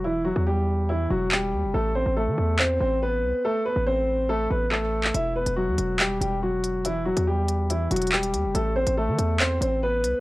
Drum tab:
HH |--------------------------------|--------------------------------|--------------------------------|x-----x-----x---x---x-------x---|
CP |------------------------x-------|----------------x---------------|------------------------x-----x-|----------------x---------------|

HH |x-----x-----x---x---xxxx--x-x---|x-----x-----x---x---x-------x---|
CP |------------------------x-------|----------------x---------------|